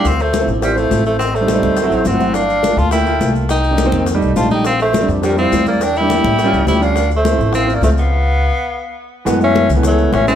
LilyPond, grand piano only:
\new Staff \with { instrumentName = "Grand piano" } { \time 4/4 \key d \minor \tempo 4 = 208 r4 r16 <f c' e'>8 r16 <f c' e'>16 r16 <f c' e'>4. | r8. <g c' ees'>16 r16 <g c' ees'>8. r16 <fis c' e'>8 r16 <fis c' e'>16 r16 <fis c' e'>8 | r4 r16 <a bes f'>8 r16 <a bes f'>16 r16 <a bes f'>4. | r8. <ees bes d'>16 r16 <ees bes c'>8. r16 <g a ees'>8 r16 <a ees'>16 r16 <g a ees'>8 |
r4 r16 <g c' d'>8 r16 <g c' d'>16 r16 <g c' e'>4. | r8. <g bes d'>16 r16 <g bes e'>8. r16 <g cis' f'>8 r16 <g cis' g'>16 r16 <g cis' f'>8 | r4 r16 <f c' e'>8 r16 <f c' e'>16 r16 <f c' f'>4. | r1 |
\key fis \minor <e gis a b>16 r16 <e gis a b>4 r16 <e gis a b>4~ <e gis a b>16 r8 <e gis a cis'>8 | }